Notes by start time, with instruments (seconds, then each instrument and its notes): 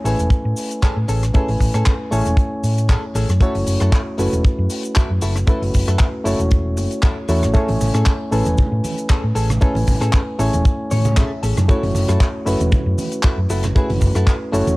0.04 fingered electric bass A1, reed electric piano A3 C#4 E4 B4 G#5, clean electric guitar C#4 G#4 A4, open hi-hat, cabasa
0.19 fingered electric bass E1, closed hi-hat, cabasa
0.30 muted fingered electric bass stroke, muted clean electric guitar stroke, kick, closed hi-hat, cabasa
0.45 fingered electric bass A2
0.57 open hi-hat, cabasa
0.71 closed hi-hat, cabasa
0.82 clean electric guitar C#4 G#4 A4, kick, clap, closed hi-hat, cabasa
0.96 fingered electric bass A2
1.08 fingered electric bass A1, clean electric guitar C#4 G#4 A4, open hi-hat, cabasa
1.23 cross-stick, closed hi-hat, cabasa
1.34 reed electric piano A3 C#4 E4 B4 G#5, clean electric guitar C#4 G#4 A4, kick, closed hi-hat, cabasa
1.48 fingered electric bass A1, open hi-hat
1.60 fingered electric bass A1, muted clean electric guitar stroke, kick, open hi-hat, cabasa
1.74 fingered electric bass A2, clean electric guitar C#4 G#4 A4, cross-stick, closed hi-hat, cabasa
1.86 kick, clap, closed hi-hat, cabasa
2.11 fingered electric bass A1, reed electric piano A3 C#4 E4 C#5 G#5, clean electric guitar C#4 G#4 A4, open hi-hat, cabasa
2.26 fingered electric bass E1, closed hi-hat, cabasa
2.37 muted clean electric guitar stroke, kick, closed hi-hat, cabasa
2.64 fingered electric bass A2, open hi-hat, cabasa
2.78 closed hi-hat, cabasa
2.89 clean electric guitar C#4 G#4 A4, kick, clap, closed hi-hat, cabasa
3.15 fingered electric bass A1, clean electric guitar C#4 G#4 A4, open hi-hat, cabasa
3.29 fingered electric bass F#2, cross-stick, closed hi-hat, cabasa
3.41 reed electric piano A3 C#4 E4 F#4 C#5, clean electric guitar E4 F#4 A4, muted fingered electric bass stroke, kick, closed hi-hat, cabasa
3.55 fingered electric bass F#1, open hi-hat
3.67 fingered electric bass F#1, muted clean electric guitar stroke, open hi-hat, cabasa
3.80 fingered electric bass F#2, clean electric guitar E4 F#4 A4, cross-stick, closed hi-hat, cabasa
3.92 kick, clap, closed hi-hat, cabasa
4.18 fingered electric bass F#1, reed electric piano A3 C#4 E4 F#4 B4, clean electric guitar E4 F#4 A4, open hi-hat, cabasa
4.33 fingered electric bass E1, closed hi-hat, cabasa
4.44 muted clean electric guitar stroke, kick, closed hi-hat, cabasa
4.59 fingered electric bass F#2
4.70 open hi-hat, cabasa
4.83 closed hi-hat, cabasa
4.95 clean electric guitar E4 F#4 A4, kick, clap, closed hi-hat, cabasa
5.10 fingered electric bass F#2
5.21 fingered electric bass F#1, clean electric guitar E4 F#4 A4, open hi-hat, cabasa
5.36 cross-stick, closed hi-hat, cabasa
5.47 reed electric piano A3 C#4 E4 F#4 B4, clean electric guitar E4 F#4 A4, kick, closed hi-hat, cabasa
5.62 fingered electric bass F#1, open hi-hat
5.74 fingered electric bass F#1, muted clean electric guitar stroke, kick, open hi-hat, cabasa
5.88 fingered electric bass F#2, clean electric guitar E4 F#4 A4, cross-stick, closed hi-hat, cabasa
5.99 kick, clap, closed hi-hat, cabasa
6.24 fingered electric bass F#1, reed electric piano A3 C#4 E4 F#4 C#5, clean electric guitar E4 F#4 A4, open hi-hat, cabasa
6.39 fingered electric bass E1, closed hi-hat, cabasa
6.51 muted clean electric guitar stroke, kick, closed hi-hat, cabasa
6.77 fingered electric bass F#1, open hi-hat, cabasa
6.91 closed hi-hat, cabasa
7.03 clean electric guitar E4 F#4 A4, kick, clap, closed hi-hat, cabasa
7.29 fingered electric bass E2, reed electric piano A3 C#4 E4 F#4 C#5, clean electric guitar E4 F#4 A4, open hi-hat, cabasa
7.43 fingered electric bass A1, cross-stick, closed hi-hat, cabasa
7.54 reed electric piano A3 C#4 E4 C#5 G#5, clean electric guitar C#4 G#4 A4, kick, closed hi-hat, cabasa
7.68 fingered electric bass A1, open hi-hat, high conga
7.80 fingered electric bass A1, muted clean electric guitar stroke, open hi-hat, low conga, cabasa
7.94 fingered electric bass A2, clean electric guitar C#4 G#4 A4, cross-stick, closed hi-hat, cabasa
8.06 kick, clap, closed hi-hat, cabasa
8.31 fingered electric bass A1, reed electric piano A3 C#4 E4 B4 G#5, clean electric guitar C#4 G#4 A4, open hi-hat, cabasa
8.45 fingered electric bass E1, closed hi-hat, high conga, cabasa
8.58 muted clean electric guitar stroke, kick, closed hi-hat, low conga, cabasa
8.72 fingered electric bass A2
8.84 open hi-hat, high conga, cabasa
8.98 closed hi-hat, cabasa
9.09 clean electric guitar C#4 G#4 A4, kick, clap, closed hi-hat, cabasa
9.24 fingered electric bass A2
9.35 fingered electric bass A1, clean electric guitar C#4 G#4 A4, open hi-hat, cabasa
9.50 cross-stick, closed hi-hat, low conga, cabasa
9.61 reed electric piano A3 C#4 E4 B4 G#5, clean electric guitar C#4 G#4 A4, kick, closed hi-hat, cabasa
9.75 fingered electric bass A1, open hi-hat, high conga
9.87 fingered electric bass A1, muted clean electric guitar stroke, kick, open hi-hat, low conga, cabasa
10.01 fingered electric bass A2, clean electric guitar C#4 G#4 A4, cross-stick, closed hi-hat, cabasa
10.13 kick, clap, closed hi-hat, cabasa
10.38 fingered electric bass A1, reed electric piano A3 C#4 E4 C#5 G#5, clean electric guitar C#4 G#4 A4, open hi-hat, cabasa
10.53 fingered electric bass E1, closed hi-hat, high conga, cabasa
10.65 muted clean electric guitar stroke, kick, closed hi-hat, cabasa
10.91 fingered electric bass A2, clean electric guitar C#5, open hi-hat, high conga, cabasa
11.05 closed hi-hat, low conga, cabasa
11.16 clean electric guitar C#4 G#4 A4 E5, kick, clap, closed hi-hat, cabasa
11.43 fingered electric bass A1, clean electric guitar C#4 G#4 A4 A5, open hi-hat, cabasa
11.57 fingered electric bass F#2, cross-stick, closed hi-hat, low conga, cabasa
11.68 reed electric piano A3 C#4 E4 F#4 C#5, clean electric guitar E4 F#4 A4, kick, closed hi-hat, cabasa
11.83 fingered electric bass F#1, open hi-hat, high conga
11.95 fingered electric bass F#1, muted clean electric guitar stroke, open hi-hat, low conga, cabasa
12.08 fingered electric bass F#2, clean electric guitar E4 F#4 A4, cross-stick, closed hi-hat, cabasa
12.20 kick, clap, closed hi-hat, cabasa
12.46 fingered electric bass F#1, reed electric piano A3 C#4 E4 F#4 B4, clean electric guitar E4 F#4 A4, open hi-hat, cabasa
12.60 fingered electric bass E1, closed hi-hat, high conga, cabasa
12.72 muted clean electric guitar stroke, kick, closed hi-hat, low conga, cabasa
12.86 fingered electric bass F#2
12.98 open hi-hat, high conga, cabasa
13.12 closed hi-hat, cabasa
13.23 clean electric guitar E4 F#4 A4, kick, clap, closed hi-hat, cabasa
13.38 fingered electric bass F#2
13.50 fingered electric bass F#1, clean electric guitar E4 F#4 A4, open hi-hat, cabasa
13.63 cross-stick, closed hi-hat, low conga, cabasa
13.75 reed electric piano A3 C#4 E4 F#4 B4, clean electric guitar E4 F#4 G#4, kick, closed hi-hat, cabasa
13.90 fingered electric bass F#1, open hi-hat, high conga
14.01 fingered electric bass F#1, muted clean electric guitar stroke, kick, open hi-hat, low conga, cabasa
14.15 fingered electric bass F#2, clean electric guitar E4 F#4 A4, cross-stick, closed hi-hat, cabasa
14.27 kick, clap, closed hi-hat, cabasa
14.52 fingered electric bass F#1, reed electric piano A3 C#4 E4 F#4 C#5, clean electric guitar E4 F#4 A4, open hi-hat, cabasa
14.67 fingered electric bass E1, closed hi-hat, high conga, cabasa